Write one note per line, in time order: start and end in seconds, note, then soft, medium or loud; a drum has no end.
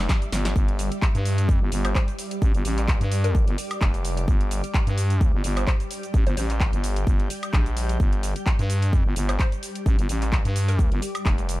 0.00 11.60 G3 medium
0.00 11.60 G4 medium
0.00 11.60 D5 medium
0.00 1.59 E5 medium
0.09 kick loud
0.09 snare medium
0.09 clap loud
0.09 shaker soft
0.22 closed hi-hat soft
0.22 shaker soft
0.32 0.54 G1 medium
0.32 snare loud
0.32 open hi-hat loud
0.32 shaker medium
0.45 snare medium
0.45 closed hi-hat medium
0.45 shaker soft
0.56 0.90 G1 loud
0.56 kick loud
0.56 shaker soft
0.68 closed hi-hat medium
0.79 open hi-hat loud
0.79 shaker medium
0.92 closed hi-hat medium
0.92 shaker soft
1.02 kick loud
1.02 clap loud
1.02 shaker soft
1.15 1.59 G2 loud
1.15 closed hi-hat medium
1.15 shaker soft
1.25 open hi-hat loud
1.25 shaker medium
1.38 closed hi-hat medium
1.38 shaker soft
1.49 kick loud
1.49 shaker soft
1.56 5.31 D6 medium
1.61 1.70 G1 loud
1.72 1.94 G1 loud
1.72 open hi-hat loud
1.72 shaker medium
1.85 1.91 C5 medium
1.85 closed hi-hat medium
1.85 high woodblock medium
1.85 shaker soft
1.95 2.03 C5 medium
1.95 kick loud
1.95 clap loud
1.95 shaker soft
2.08 closed hi-hat soft
2.08 shaker soft
2.19 open hi-hat loud
2.19 shaker medium
2.31 closed hi-hat medium
2.31 shaker soft
2.42 2.52 A1 loud
2.42 kick loud
2.42 shaker soft
2.54 2.63 G1 loud
2.54 closed hi-hat medium
2.54 shaker soft
2.65 2.99 A1 loud
2.65 open hi-hat loud
2.65 shaker medium
2.78 clap soft
2.78 closed hi-hat medium
2.78 shaker soft
2.88 kick loud
2.88 clap loud
2.88 shaker soft
3.01 3.45 G2 loud
3.01 closed hi-hat medium
3.01 shaker soft
3.12 open hi-hat loud
3.12 shaker medium
3.24 3.89 A#4 medium
3.24 closed hi-hat medium
3.24 shaker soft
3.35 kick loud
3.35 shaker soft
3.47 3.56 G1 loud
3.47 closed hi-hat soft
3.58 open hi-hat loud
3.58 shaker medium
3.71 closed hi-hat medium
3.71 high woodblock medium
3.71 shaker soft
3.81 4.26 F1 medium
3.81 kick loud
3.81 clap loud
3.81 shaker soft
3.94 closed hi-hat soft
3.94 shaker soft
4.05 open hi-hat loud
4.05 shaker medium
4.17 closed hi-hat medium
4.17 shaker soft
4.28 4.62 G1 loud
4.28 kick loud
4.28 shaker soft
4.41 closed hi-hat medium
4.51 open hi-hat loud
4.51 shaker medium
4.64 closed hi-hat medium
4.64 shaker soft
4.74 kick loud
4.74 clap loud
4.74 shaker soft
4.87 5.32 G2 medium
4.87 closed hi-hat medium
4.87 shaker soft
4.98 open hi-hat loud
4.98 shaker medium
5.10 closed hi-hat medium
5.10 shaker soft
5.21 kick loud
5.21 shaker soft
5.28 9.03 G6 medium
5.34 5.42 G1 loud
5.44 5.66 G1 loud
5.44 open hi-hat loud
5.44 shaker medium
5.57 5.64 C5 medium
5.57 closed hi-hat medium
5.57 high woodblock medium
5.57 shaker soft
5.67 5.76 C5 medium
5.67 kick loud
5.67 clap loud
5.67 shaker soft
5.80 closed hi-hat soft
5.80 shaker soft
5.91 open hi-hat loud
5.91 shaker medium
6.03 closed hi-hat medium
6.03 shaker soft
6.14 6.25 A1 medium
6.14 kick loud
6.14 shaker soft
6.27 6.35 G1 loud
6.27 6.33 C5 medium
6.27 closed hi-hat soft
6.27 shaker soft
6.37 6.71 A1 medium
6.37 6.45 C5 medium
6.37 open hi-hat loud
6.37 shaker medium
6.50 clap soft
6.50 closed hi-hat medium
6.50 shaker soft
6.60 kick loud
6.60 clap loud
6.60 shaker soft
6.73 7.05 G1 loud
6.73 closed hi-hat medium
6.73 shaker soft
6.84 open hi-hat loud
6.84 shaker medium
6.96 closed hi-hat medium
6.96 shaker soft
7.07 7.28 G1 loud
7.07 kick loud
7.07 shaker soft
7.20 closed hi-hat soft
7.30 open hi-hat loud
7.30 shaker medium
7.43 closed hi-hat medium
7.43 high woodblock medium
7.43 shaker soft
7.53 7.98 A#1 loud
7.53 kick loud
7.53 clap loud
7.53 shaker soft
7.66 closed hi-hat soft
7.66 shaker soft
7.77 open hi-hat loud
7.77 shaker medium
7.89 closed hi-hat medium
7.89 shaker soft
8.00 8.34 G1 loud
8.00 kick loud
8.00 shaker soft
8.13 closed hi-hat medium
8.23 open hi-hat loud
8.23 shaker medium
8.36 closed hi-hat medium
8.36 shaker soft
8.46 kick loud
8.46 clap loud
8.46 shaker soft
8.59 9.04 G2 loud
8.59 closed hi-hat medium
8.59 shaker soft
8.70 open hi-hat loud
8.70 shaker medium
8.82 closed hi-hat medium
8.82 shaker soft
8.93 kick loud
8.93 shaker soft
9.01 11.60 D6 medium
9.06 9.15 G1 loud
9.16 9.38 G1 loud
9.16 open hi-hat loud
9.16 shaker medium
9.29 9.36 C5 medium
9.29 closed hi-hat medium
9.29 high woodblock medium
9.29 shaker soft
9.39 9.48 C5 medium
9.39 kick loud
9.39 clap loud
9.39 shaker soft
9.52 closed hi-hat soft
9.52 shaker soft
9.63 open hi-hat loud
9.63 shaker medium
9.75 closed hi-hat medium
9.75 shaker soft
9.86 9.97 A1 loud
9.86 kick loud
9.86 shaker soft
9.99 10.08 G1 loud
9.99 closed hi-hat medium
9.99 shaker soft
10.09 10.43 A1 loud
10.09 open hi-hat loud
10.09 shaker medium
10.22 clap soft
10.22 closed hi-hat medium
10.22 shaker soft
10.32 kick loud
10.32 clap loud
10.32 shaker soft
10.45 10.90 G2 loud
10.45 closed hi-hat medium
10.45 shaker soft
10.56 open hi-hat loud
10.56 shaker medium
10.68 11.33 A#4 medium
10.68 closed hi-hat medium
10.68 shaker soft
10.79 kick loud
10.79 shaker soft
10.92 11.01 G1 loud
10.92 closed hi-hat soft
11.02 open hi-hat loud
11.02 shaker medium
11.15 closed hi-hat medium
11.15 high woodblock medium
11.15 shaker soft
11.26 11.60 F1 medium
11.26 kick loud
11.26 clap loud
11.26 shaker soft
11.38 closed hi-hat soft
11.38 shaker soft
11.49 open hi-hat loud
11.49 shaker medium